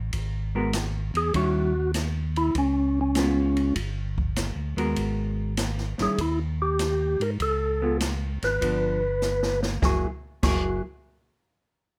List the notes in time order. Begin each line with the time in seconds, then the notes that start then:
Already playing: A1
0.13 G#1, kick, ride
0.55 G#3 B3 F#4 A#4
0.73 snare, hi-hat pedal, ride
1.14 E2 G#4, ride
1.34 D#2 D#3 G3 C#4 E4 F#4, kick, ride
1.94 snare, hi-hat pedal, ride
2.36 E4, ride
2.55 C#2 C#4, kick, ride
3.01 C#4
3.15 G#3 B3 F4, snare, hi-hat pedal, ride
3.57 ride
3.75 G1, kick, ride
4.18 kick
4.36 snare, hi-hat pedal, ride
4.56 D2
4.76 D#2 G#3 B3 F#4 A#4, ride
4.96 G#1, kick, ride
5.57 snare, hi-hat pedal, ride
5.78 snare
5.98 G#1 D#3 G3 C#4 E4, snare, ride
6.03 G#4
6.18 D#2 E4, kick, ride
6.62 G4
6.79 snare, hi-hat pedal, ride
7.20 G#2 A#4, ride
7.40 C#2 A4, kick, ride
7.82 G#3 B3 F4
8.00 snare, hi-hat pedal, ride
8.43 G#1 B4, snare, ride
8.61 G1 F3 B3 D4, kick, ride
9.22 snare, hi-hat pedal
9.43 snare
9.63 snare
9.82 F#1 F#3 A#3 E4 F#4 G#4, kick, snare
10.43 F#1 F#3 A#3 E4 F#4 G#4, kick, snare, crash